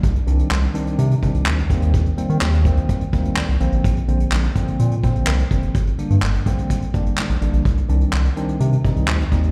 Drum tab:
HH |xxxx-xxxxxxx-xxx|xxxx-xxxxxxx-xxx|xxxx-xxxxxxx-xxx|xxxx-xxxxxxx-xxx|
CP |----x-------x---|----x-------x---|----x-------x---|----x-------x---|
SD |----o-------o---|----o-------o---|----o-------o---|----o-------o---|
BD |o---------o---o-|o-----o-o-o-----|o-----o---o---o-|o-----o-o-o-----|

HH |xxxx-xxxxxxx-xxx|
CP |----x-------x---|
SD |----o-------o---|
BD |o---------o---o-|